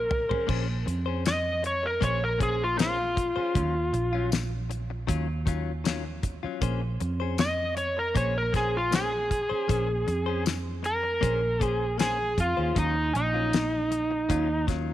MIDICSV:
0, 0, Header, 1, 7, 480
1, 0, Start_track
1, 0, Key_signature, -5, "minor"
1, 0, Tempo, 767263
1, 304, Time_signature, 4, 2, 24, 8
1, 9343, End_track
2, 0, Start_track
2, 0, Title_t, "Electric slide guitar"
2, 0, Program_c, 0, 29
2, 0, Note_on_c, 0, 70, 82
2, 294, Note_off_c, 0, 70, 0
2, 800, Note_on_c, 0, 75, 97
2, 1024, Note_off_c, 0, 75, 0
2, 1042, Note_on_c, 0, 73, 87
2, 1156, Note_off_c, 0, 73, 0
2, 1162, Note_on_c, 0, 70, 72
2, 1265, Note_off_c, 0, 70, 0
2, 1273, Note_on_c, 0, 73, 90
2, 1391, Note_off_c, 0, 73, 0
2, 1400, Note_on_c, 0, 70, 76
2, 1504, Note_off_c, 0, 70, 0
2, 1517, Note_on_c, 0, 68, 83
2, 1633, Note_off_c, 0, 68, 0
2, 1649, Note_on_c, 0, 65, 84
2, 1745, Note_off_c, 0, 65, 0
2, 1752, Note_on_c, 0, 65, 92
2, 2681, Note_off_c, 0, 65, 0
2, 4631, Note_on_c, 0, 75, 108
2, 4858, Note_off_c, 0, 75, 0
2, 4863, Note_on_c, 0, 73, 86
2, 4985, Note_off_c, 0, 73, 0
2, 4998, Note_on_c, 0, 70, 66
2, 5102, Note_off_c, 0, 70, 0
2, 5110, Note_on_c, 0, 73, 83
2, 5229, Note_off_c, 0, 73, 0
2, 5241, Note_on_c, 0, 70, 84
2, 5344, Note_off_c, 0, 70, 0
2, 5357, Note_on_c, 0, 68, 77
2, 5473, Note_off_c, 0, 68, 0
2, 5486, Note_on_c, 0, 65, 85
2, 5586, Note_off_c, 0, 65, 0
2, 5601, Note_on_c, 0, 68, 98
2, 6526, Note_off_c, 0, 68, 0
2, 6792, Note_on_c, 0, 70, 105
2, 7286, Note_off_c, 0, 70, 0
2, 7286, Note_on_c, 0, 68, 105
2, 7486, Note_off_c, 0, 68, 0
2, 7510, Note_on_c, 0, 68, 86
2, 7739, Note_off_c, 0, 68, 0
2, 7758, Note_on_c, 0, 65, 77
2, 7983, Note_off_c, 0, 65, 0
2, 7995, Note_on_c, 0, 63, 92
2, 8222, Note_off_c, 0, 63, 0
2, 8235, Note_on_c, 0, 63, 91
2, 9165, Note_off_c, 0, 63, 0
2, 9343, End_track
3, 0, Start_track
3, 0, Title_t, "Clean electric guitar"
3, 0, Program_c, 1, 27
3, 183, Note_on_c, 1, 72, 49
3, 192, Note_on_c, 1, 68, 50
3, 200, Note_on_c, 1, 61, 48
3, 292, Note_off_c, 1, 61, 0
3, 293, Note_on_c, 1, 58, 80
3, 295, Note_off_c, 1, 68, 0
3, 299, Note_on_c, 1, 61, 87
3, 300, Note_off_c, 1, 72, 0
3, 303, Note_on_c, 1, 68, 81
3, 306, Note_on_c, 1, 72, 89
3, 414, Note_off_c, 1, 72, 0
3, 421, Note_off_c, 1, 68, 0
3, 424, Note_off_c, 1, 61, 0
3, 426, Note_off_c, 1, 58, 0
3, 662, Note_on_c, 1, 72, 57
3, 672, Note_on_c, 1, 68, 46
3, 681, Note_on_c, 1, 61, 43
3, 775, Note_off_c, 1, 61, 0
3, 777, Note_off_c, 1, 68, 0
3, 779, Note_off_c, 1, 72, 0
3, 1257, Note_on_c, 1, 58, 84
3, 1262, Note_on_c, 1, 61, 71
3, 1267, Note_on_c, 1, 68, 73
3, 1269, Note_on_c, 1, 72, 86
3, 1377, Note_off_c, 1, 72, 0
3, 1382, Note_off_c, 1, 68, 0
3, 1386, Note_off_c, 1, 61, 0
3, 1387, Note_off_c, 1, 58, 0
3, 1494, Note_on_c, 1, 58, 56
3, 1500, Note_on_c, 1, 61, 60
3, 1508, Note_on_c, 1, 68, 61
3, 1512, Note_on_c, 1, 72, 65
3, 1648, Note_off_c, 1, 58, 0
3, 1651, Note_off_c, 1, 61, 0
3, 1655, Note_off_c, 1, 68, 0
3, 1657, Note_off_c, 1, 72, 0
3, 1730, Note_on_c, 1, 58, 58
3, 1739, Note_on_c, 1, 61, 62
3, 1743, Note_on_c, 1, 68, 57
3, 1749, Note_on_c, 1, 72, 64
3, 1856, Note_off_c, 1, 72, 0
3, 1862, Note_off_c, 1, 68, 0
3, 1863, Note_off_c, 1, 58, 0
3, 1866, Note_off_c, 1, 61, 0
3, 2101, Note_on_c, 1, 72, 55
3, 2111, Note_on_c, 1, 68, 44
3, 2118, Note_on_c, 1, 61, 38
3, 2217, Note_off_c, 1, 72, 0
3, 2217, Note_on_c, 1, 51, 72
3, 2219, Note_off_c, 1, 61, 0
3, 2222, Note_off_c, 1, 68, 0
3, 2222, Note_on_c, 1, 54, 73
3, 2227, Note_on_c, 1, 61, 77
3, 2231, Note_on_c, 1, 65, 84
3, 2342, Note_off_c, 1, 65, 0
3, 2347, Note_off_c, 1, 51, 0
3, 2348, Note_off_c, 1, 61, 0
3, 2349, Note_off_c, 1, 54, 0
3, 2582, Note_on_c, 1, 65, 60
3, 2593, Note_on_c, 1, 61, 57
3, 2600, Note_on_c, 1, 54, 51
3, 2695, Note_off_c, 1, 54, 0
3, 2698, Note_off_c, 1, 61, 0
3, 2698, Note_off_c, 1, 65, 0
3, 3174, Note_on_c, 1, 51, 79
3, 3179, Note_on_c, 1, 54, 91
3, 3184, Note_on_c, 1, 61, 101
3, 3187, Note_on_c, 1, 65, 98
3, 3300, Note_off_c, 1, 65, 0
3, 3304, Note_off_c, 1, 61, 0
3, 3305, Note_off_c, 1, 51, 0
3, 3307, Note_off_c, 1, 54, 0
3, 3414, Note_on_c, 1, 51, 61
3, 3421, Note_on_c, 1, 54, 66
3, 3427, Note_on_c, 1, 61, 66
3, 3432, Note_on_c, 1, 65, 73
3, 3567, Note_off_c, 1, 51, 0
3, 3571, Note_off_c, 1, 54, 0
3, 3574, Note_off_c, 1, 61, 0
3, 3576, Note_off_c, 1, 65, 0
3, 3656, Note_on_c, 1, 51, 70
3, 3663, Note_on_c, 1, 54, 69
3, 3667, Note_on_c, 1, 61, 75
3, 3673, Note_on_c, 1, 65, 73
3, 3778, Note_off_c, 1, 65, 0
3, 3782, Note_off_c, 1, 61, 0
3, 3786, Note_off_c, 1, 51, 0
3, 3786, Note_off_c, 1, 54, 0
3, 4023, Note_on_c, 1, 65, 55
3, 4032, Note_on_c, 1, 61, 49
3, 4040, Note_on_c, 1, 54, 44
3, 4133, Note_off_c, 1, 61, 0
3, 4134, Note_off_c, 1, 54, 0
3, 4137, Note_on_c, 1, 58, 81
3, 4138, Note_off_c, 1, 65, 0
3, 4141, Note_on_c, 1, 61, 94
3, 4144, Note_on_c, 1, 68, 90
3, 4147, Note_on_c, 1, 72, 94
3, 4257, Note_off_c, 1, 72, 0
3, 4263, Note_off_c, 1, 68, 0
3, 4266, Note_off_c, 1, 58, 0
3, 4266, Note_off_c, 1, 61, 0
3, 4504, Note_on_c, 1, 72, 57
3, 4514, Note_on_c, 1, 68, 54
3, 4522, Note_on_c, 1, 61, 46
3, 4612, Note_off_c, 1, 61, 0
3, 4614, Note_off_c, 1, 68, 0
3, 4618, Note_off_c, 1, 72, 0
3, 5096, Note_on_c, 1, 58, 80
3, 5101, Note_on_c, 1, 61, 77
3, 5106, Note_on_c, 1, 68, 84
3, 5111, Note_on_c, 1, 72, 89
3, 5220, Note_off_c, 1, 72, 0
3, 5225, Note_off_c, 1, 68, 0
3, 5226, Note_off_c, 1, 58, 0
3, 5228, Note_off_c, 1, 61, 0
3, 5334, Note_on_c, 1, 58, 58
3, 5341, Note_on_c, 1, 61, 52
3, 5349, Note_on_c, 1, 68, 58
3, 5353, Note_on_c, 1, 72, 61
3, 5487, Note_off_c, 1, 58, 0
3, 5490, Note_off_c, 1, 61, 0
3, 5494, Note_off_c, 1, 68, 0
3, 5497, Note_off_c, 1, 72, 0
3, 5574, Note_on_c, 1, 58, 55
3, 5583, Note_on_c, 1, 61, 64
3, 5588, Note_on_c, 1, 68, 62
3, 5591, Note_on_c, 1, 72, 66
3, 5699, Note_off_c, 1, 72, 0
3, 5703, Note_off_c, 1, 68, 0
3, 5705, Note_off_c, 1, 58, 0
3, 5706, Note_off_c, 1, 61, 0
3, 5939, Note_on_c, 1, 72, 53
3, 5949, Note_on_c, 1, 68, 47
3, 5957, Note_on_c, 1, 61, 39
3, 6054, Note_off_c, 1, 61, 0
3, 6056, Note_off_c, 1, 72, 0
3, 6056, Note_on_c, 1, 58, 74
3, 6057, Note_off_c, 1, 68, 0
3, 6062, Note_on_c, 1, 61, 75
3, 6065, Note_on_c, 1, 68, 76
3, 6069, Note_on_c, 1, 72, 80
3, 6177, Note_off_c, 1, 72, 0
3, 6180, Note_off_c, 1, 68, 0
3, 6185, Note_off_c, 1, 61, 0
3, 6186, Note_off_c, 1, 58, 0
3, 6420, Note_on_c, 1, 72, 58
3, 6431, Note_on_c, 1, 68, 59
3, 6439, Note_on_c, 1, 61, 52
3, 6532, Note_off_c, 1, 61, 0
3, 6535, Note_off_c, 1, 68, 0
3, 6536, Note_off_c, 1, 72, 0
3, 7013, Note_on_c, 1, 58, 84
3, 7018, Note_on_c, 1, 61, 81
3, 7024, Note_on_c, 1, 68, 88
3, 7027, Note_on_c, 1, 72, 83
3, 7138, Note_off_c, 1, 72, 0
3, 7141, Note_off_c, 1, 68, 0
3, 7145, Note_off_c, 1, 58, 0
3, 7147, Note_off_c, 1, 61, 0
3, 7256, Note_on_c, 1, 58, 52
3, 7264, Note_on_c, 1, 61, 56
3, 7270, Note_on_c, 1, 68, 64
3, 7275, Note_on_c, 1, 72, 65
3, 7409, Note_off_c, 1, 58, 0
3, 7413, Note_off_c, 1, 61, 0
3, 7416, Note_off_c, 1, 68, 0
3, 7419, Note_off_c, 1, 72, 0
3, 7494, Note_on_c, 1, 58, 61
3, 7503, Note_on_c, 1, 61, 58
3, 7509, Note_on_c, 1, 68, 62
3, 7514, Note_on_c, 1, 72, 65
3, 7621, Note_off_c, 1, 72, 0
3, 7625, Note_off_c, 1, 68, 0
3, 7626, Note_off_c, 1, 58, 0
3, 7629, Note_off_c, 1, 61, 0
3, 7865, Note_on_c, 1, 72, 54
3, 7876, Note_on_c, 1, 68, 50
3, 7883, Note_on_c, 1, 61, 43
3, 7978, Note_on_c, 1, 51, 73
3, 7979, Note_off_c, 1, 61, 0
3, 7980, Note_off_c, 1, 72, 0
3, 7983, Note_on_c, 1, 54, 71
3, 7985, Note_off_c, 1, 68, 0
3, 7987, Note_on_c, 1, 61, 80
3, 7990, Note_on_c, 1, 65, 81
3, 8101, Note_off_c, 1, 65, 0
3, 8106, Note_off_c, 1, 61, 0
3, 8108, Note_off_c, 1, 51, 0
3, 8109, Note_off_c, 1, 54, 0
3, 8346, Note_on_c, 1, 65, 56
3, 8355, Note_on_c, 1, 61, 53
3, 8363, Note_on_c, 1, 54, 45
3, 8456, Note_off_c, 1, 54, 0
3, 8460, Note_off_c, 1, 61, 0
3, 8460, Note_off_c, 1, 65, 0
3, 8940, Note_on_c, 1, 51, 80
3, 8944, Note_on_c, 1, 54, 83
3, 8949, Note_on_c, 1, 61, 90
3, 8951, Note_on_c, 1, 65, 97
3, 9063, Note_off_c, 1, 65, 0
3, 9068, Note_off_c, 1, 61, 0
3, 9070, Note_off_c, 1, 51, 0
3, 9070, Note_off_c, 1, 54, 0
3, 9179, Note_on_c, 1, 51, 65
3, 9188, Note_on_c, 1, 54, 64
3, 9192, Note_on_c, 1, 61, 68
3, 9198, Note_on_c, 1, 65, 68
3, 9331, Note_off_c, 1, 51, 0
3, 9336, Note_off_c, 1, 54, 0
3, 9338, Note_off_c, 1, 61, 0
3, 9341, Note_off_c, 1, 65, 0
3, 9343, End_track
4, 0, Start_track
4, 0, Title_t, "Fingered electric bass"
4, 0, Program_c, 2, 33
4, 0, Note_on_c, 2, 34, 91
4, 167, Note_off_c, 2, 34, 0
4, 304, Note_on_c, 2, 34, 92
4, 523, Note_off_c, 2, 34, 0
4, 543, Note_on_c, 2, 41, 86
4, 1237, Note_off_c, 2, 41, 0
4, 1264, Note_on_c, 2, 34, 91
4, 2085, Note_off_c, 2, 34, 0
4, 2224, Note_on_c, 2, 39, 87
4, 2441, Note_off_c, 2, 39, 0
4, 2458, Note_on_c, 2, 34, 82
4, 3154, Note_off_c, 2, 34, 0
4, 3180, Note_on_c, 2, 39, 90
4, 4002, Note_off_c, 2, 39, 0
4, 4139, Note_on_c, 2, 34, 88
4, 4358, Note_off_c, 2, 34, 0
4, 4385, Note_on_c, 2, 41, 85
4, 5078, Note_off_c, 2, 41, 0
4, 5103, Note_on_c, 2, 34, 86
4, 5924, Note_off_c, 2, 34, 0
4, 6061, Note_on_c, 2, 34, 91
4, 6280, Note_off_c, 2, 34, 0
4, 6302, Note_on_c, 2, 41, 86
4, 6997, Note_off_c, 2, 41, 0
4, 7023, Note_on_c, 2, 34, 91
4, 7718, Note_off_c, 2, 34, 0
4, 7743, Note_on_c, 2, 41, 78
4, 7858, Note_off_c, 2, 41, 0
4, 7871, Note_on_c, 2, 39, 74
4, 7981, Note_off_c, 2, 39, 0
4, 7984, Note_on_c, 2, 39, 90
4, 8202, Note_off_c, 2, 39, 0
4, 8223, Note_on_c, 2, 34, 83
4, 8919, Note_off_c, 2, 34, 0
4, 8945, Note_on_c, 2, 39, 94
4, 9343, Note_off_c, 2, 39, 0
4, 9343, End_track
5, 0, Start_track
5, 0, Title_t, "Muted clean electric guitar strokes"
5, 59, Note_on_c, 9, 29, 35
5, 122, Note_off_c, 9, 29, 0
5, 422, Note_on_c, 9, 29, 45
5, 484, Note_off_c, 9, 29, 0
5, 536, Note_on_c, 9, 29, 46
5, 599, Note_off_c, 9, 29, 0
5, 779, Note_on_c, 9, 29, 38
5, 842, Note_off_c, 9, 29, 0
5, 1016, Note_on_c, 9, 29, 39
5, 1079, Note_off_c, 9, 29, 0
5, 1147, Note_on_c, 9, 29, 40
5, 1209, Note_off_c, 9, 29, 0
5, 1385, Note_on_c, 9, 29, 41
5, 1447, Note_off_c, 9, 29, 0
5, 1863, Note_on_c, 9, 29, 44
5, 1926, Note_off_c, 9, 29, 0
5, 1976, Note_on_c, 9, 29, 41
5, 2039, Note_off_c, 9, 29, 0
5, 2350, Note_on_c, 9, 29, 45
5, 2412, Note_off_c, 9, 29, 0
5, 2459, Note_on_c, 9, 29, 46
5, 2521, Note_off_c, 9, 29, 0
5, 2699, Note_on_c, 9, 29, 39
5, 2761, Note_off_c, 9, 29, 0
5, 2938, Note_on_c, 9, 29, 47
5, 3001, Note_off_c, 9, 29, 0
5, 3067, Note_on_c, 9, 29, 54
5, 3130, Note_off_c, 9, 29, 0
5, 3307, Note_on_c, 9, 29, 47
5, 3370, Note_off_c, 9, 29, 0
5, 3785, Note_on_c, 9, 29, 46
5, 3848, Note_off_c, 9, 29, 0
5, 3897, Note_on_c, 9, 29, 43
5, 3960, Note_off_c, 9, 29, 0
5, 4265, Note_on_c, 9, 29, 52
5, 4328, Note_off_c, 9, 29, 0
5, 4382, Note_on_c, 9, 29, 46
5, 4444, Note_off_c, 9, 29, 0
5, 4617, Note_on_c, 9, 29, 38
5, 4679, Note_off_c, 9, 29, 0
5, 4857, Note_on_c, 9, 29, 40
5, 4920, Note_off_c, 9, 29, 0
5, 4985, Note_on_c, 9, 29, 42
5, 5048, Note_off_c, 9, 29, 0
5, 5228, Note_on_c, 9, 29, 43
5, 5291, Note_off_c, 9, 29, 0
5, 5706, Note_on_c, 9, 29, 41
5, 5769, Note_off_c, 9, 29, 0
5, 5817, Note_on_c, 9, 29, 36
5, 5880, Note_off_c, 9, 29, 0
5, 6185, Note_on_c, 9, 29, 51
5, 6247, Note_off_c, 9, 29, 0
5, 6299, Note_on_c, 9, 29, 47
5, 6361, Note_off_c, 9, 29, 0
5, 6537, Note_on_c, 9, 29, 43
5, 6599, Note_off_c, 9, 29, 0
5, 6774, Note_on_c, 9, 29, 43
5, 6836, Note_off_c, 9, 29, 0
5, 6902, Note_on_c, 9, 29, 40
5, 6965, Note_off_c, 9, 29, 0
5, 7145, Note_on_c, 9, 29, 41
5, 7208, Note_off_c, 9, 29, 0
5, 7741, Note_on_c, 9, 29, 37
5, 7804, Note_off_c, 9, 29, 0
5, 8108, Note_on_c, 9, 29, 41
5, 8171, Note_off_c, 9, 29, 0
5, 8219, Note_on_c, 9, 29, 39
5, 8282, Note_off_c, 9, 29, 0
5, 8459, Note_on_c, 9, 29, 39
5, 8522, Note_off_c, 9, 29, 0
5, 8701, Note_on_c, 9, 29, 38
5, 8763, Note_off_c, 9, 29, 0
5, 8826, Note_on_c, 9, 29, 46
5, 8888, Note_off_c, 9, 29, 0
5, 9070, Note_on_c, 9, 29, 50
5, 9133, Note_off_c, 9, 29, 0
5, 9343, End_track
6, 0, Start_track
6, 0, Title_t, "Muted fingered electric bass strokes"
6, 189, Note_on_c, 9, 29, 35
6, 251, Note_off_c, 9, 29, 0
6, 2106, Note_on_c, 9, 29, 35
6, 2169, Note_off_c, 9, 29, 0
6, 4029, Note_on_c, 9, 29, 37
6, 4092, Note_off_c, 9, 29, 0
6, 5951, Note_on_c, 9, 29, 34
6, 6013, Note_off_c, 9, 29, 0
6, 9343, End_track
7, 0, Start_track
7, 0, Title_t, "Drums"
7, 67, Note_on_c, 9, 43, 95
7, 130, Note_off_c, 9, 43, 0
7, 195, Note_on_c, 9, 43, 80
7, 257, Note_off_c, 9, 43, 0
7, 306, Note_on_c, 9, 36, 110
7, 308, Note_on_c, 9, 49, 94
7, 368, Note_off_c, 9, 36, 0
7, 370, Note_off_c, 9, 49, 0
7, 550, Note_on_c, 9, 42, 59
7, 612, Note_off_c, 9, 42, 0
7, 786, Note_on_c, 9, 42, 77
7, 786, Note_on_c, 9, 54, 102
7, 793, Note_on_c, 9, 38, 100
7, 848, Note_off_c, 9, 42, 0
7, 848, Note_off_c, 9, 54, 0
7, 855, Note_off_c, 9, 38, 0
7, 1026, Note_on_c, 9, 42, 60
7, 1089, Note_off_c, 9, 42, 0
7, 1264, Note_on_c, 9, 36, 87
7, 1267, Note_on_c, 9, 42, 79
7, 1326, Note_off_c, 9, 36, 0
7, 1329, Note_off_c, 9, 42, 0
7, 1504, Note_on_c, 9, 36, 77
7, 1505, Note_on_c, 9, 42, 60
7, 1567, Note_off_c, 9, 36, 0
7, 1568, Note_off_c, 9, 42, 0
7, 1747, Note_on_c, 9, 42, 81
7, 1747, Note_on_c, 9, 54, 114
7, 1753, Note_on_c, 9, 38, 108
7, 1809, Note_off_c, 9, 42, 0
7, 1809, Note_off_c, 9, 54, 0
7, 1816, Note_off_c, 9, 38, 0
7, 1984, Note_on_c, 9, 36, 84
7, 1988, Note_on_c, 9, 42, 63
7, 2047, Note_off_c, 9, 36, 0
7, 2050, Note_off_c, 9, 42, 0
7, 2223, Note_on_c, 9, 36, 102
7, 2225, Note_on_c, 9, 42, 78
7, 2286, Note_off_c, 9, 36, 0
7, 2288, Note_off_c, 9, 42, 0
7, 2463, Note_on_c, 9, 42, 58
7, 2526, Note_off_c, 9, 42, 0
7, 2703, Note_on_c, 9, 42, 80
7, 2703, Note_on_c, 9, 54, 107
7, 2710, Note_on_c, 9, 38, 106
7, 2765, Note_off_c, 9, 42, 0
7, 2765, Note_off_c, 9, 54, 0
7, 2772, Note_off_c, 9, 38, 0
7, 2945, Note_on_c, 9, 42, 59
7, 3008, Note_off_c, 9, 42, 0
7, 3181, Note_on_c, 9, 36, 82
7, 3184, Note_on_c, 9, 42, 86
7, 3244, Note_off_c, 9, 36, 0
7, 3247, Note_off_c, 9, 42, 0
7, 3421, Note_on_c, 9, 36, 80
7, 3422, Note_on_c, 9, 42, 67
7, 3483, Note_off_c, 9, 36, 0
7, 3485, Note_off_c, 9, 42, 0
7, 3662, Note_on_c, 9, 42, 86
7, 3662, Note_on_c, 9, 54, 113
7, 3669, Note_on_c, 9, 38, 111
7, 3725, Note_off_c, 9, 42, 0
7, 3725, Note_off_c, 9, 54, 0
7, 3732, Note_off_c, 9, 38, 0
7, 3899, Note_on_c, 9, 42, 66
7, 3900, Note_on_c, 9, 36, 78
7, 3962, Note_off_c, 9, 36, 0
7, 3962, Note_off_c, 9, 42, 0
7, 4139, Note_on_c, 9, 42, 81
7, 4140, Note_on_c, 9, 36, 113
7, 4201, Note_off_c, 9, 42, 0
7, 4202, Note_off_c, 9, 36, 0
7, 4382, Note_on_c, 9, 42, 58
7, 4444, Note_off_c, 9, 42, 0
7, 4618, Note_on_c, 9, 42, 82
7, 4618, Note_on_c, 9, 54, 101
7, 4625, Note_on_c, 9, 38, 108
7, 4681, Note_off_c, 9, 42, 0
7, 4681, Note_off_c, 9, 54, 0
7, 4688, Note_off_c, 9, 38, 0
7, 4860, Note_on_c, 9, 42, 62
7, 4922, Note_off_c, 9, 42, 0
7, 5102, Note_on_c, 9, 36, 80
7, 5102, Note_on_c, 9, 42, 77
7, 5164, Note_off_c, 9, 36, 0
7, 5164, Note_off_c, 9, 42, 0
7, 5342, Note_on_c, 9, 36, 77
7, 5343, Note_on_c, 9, 42, 54
7, 5350, Note_on_c, 9, 38, 30
7, 5405, Note_off_c, 9, 36, 0
7, 5406, Note_off_c, 9, 42, 0
7, 5413, Note_off_c, 9, 38, 0
7, 5583, Note_on_c, 9, 42, 80
7, 5583, Note_on_c, 9, 54, 117
7, 5589, Note_on_c, 9, 38, 106
7, 5645, Note_off_c, 9, 42, 0
7, 5645, Note_off_c, 9, 54, 0
7, 5652, Note_off_c, 9, 38, 0
7, 5824, Note_on_c, 9, 36, 80
7, 5827, Note_on_c, 9, 42, 63
7, 5886, Note_off_c, 9, 36, 0
7, 5889, Note_off_c, 9, 42, 0
7, 6064, Note_on_c, 9, 36, 112
7, 6065, Note_on_c, 9, 42, 84
7, 6126, Note_off_c, 9, 36, 0
7, 6127, Note_off_c, 9, 42, 0
7, 6304, Note_on_c, 9, 42, 53
7, 6367, Note_off_c, 9, 42, 0
7, 6543, Note_on_c, 9, 42, 76
7, 6543, Note_on_c, 9, 54, 103
7, 6550, Note_on_c, 9, 38, 96
7, 6606, Note_off_c, 9, 42, 0
7, 6606, Note_off_c, 9, 54, 0
7, 6613, Note_off_c, 9, 38, 0
7, 6784, Note_on_c, 9, 42, 60
7, 6846, Note_off_c, 9, 42, 0
7, 7024, Note_on_c, 9, 36, 86
7, 7024, Note_on_c, 9, 42, 81
7, 7087, Note_off_c, 9, 36, 0
7, 7087, Note_off_c, 9, 42, 0
7, 7264, Note_on_c, 9, 36, 74
7, 7266, Note_on_c, 9, 42, 58
7, 7327, Note_off_c, 9, 36, 0
7, 7329, Note_off_c, 9, 42, 0
7, 7504, Note_on_c, 9, 42, 90
7, 7504, Note_on_c, 9, 54, 112
7, 7510, Note_on_c, 9, 38, 118
7, 7566, Note_off_c, 9, 42, 0
7, 7566, Note_off_c, 9, 54, 0
7, 7573, Note_off_c, 9, 38, 0
7, 7744, Note_on_c, 9, 36, 78
7, 7745, Note_on_c, 9, 42, 67
7, 7806, Note_off_c, 9, 36, 0
7, 7808, Note_off_c, 9, 42, 0
7, 7984, Note_on_c, 9, 36, 109
7, 7987, Note_on_c, 9, 42, 91
7, 8047, Note_off_c, 9, 36, 0
7, 8050, Note_off_c, 9, 42, 0
7, 8227, Note_on_c, 9, 42, 60
7, 8290, Note_off_c, 9, 42, 0
7, 8466, Note_on_c, 9, 42, 82
7, 8466, Note_on_c, 9, 54, 101
7, 8473, Note_on_c, 9, 38, 106
7, 8529, Note_off_c, 9, 42, 0
7, 8529, Note_off_c, 9, 54, 0
7, 8536, Note_off_c, 9, 38, 0
7, 8707, Note_on_c, 9, 42, 61
7, 8769, Note_off_c, 9, 42, 0
7, 8944, Note_on_c, 9, 36, 83
7, 8945, Note_on_c, 9, 42, 82
7, 9007, Note_off_c, 9, 36, 0
7, 9008, Note_off_c, 9, 42, 0
7, 9184, Note_on_c, 9, 36, 74
7, 9186, Note_on_c, 9, 42, 58
7, 9193, Note_on_c, 9, 38, 31
7, 9247, Note_off_c, 9, 36, 0
7, 9249, Note_off_c, 9, 42, 0
7, 9256, Note_off_c, 9, 38, 0
7, 9343, End_track
0, 0, End_of_file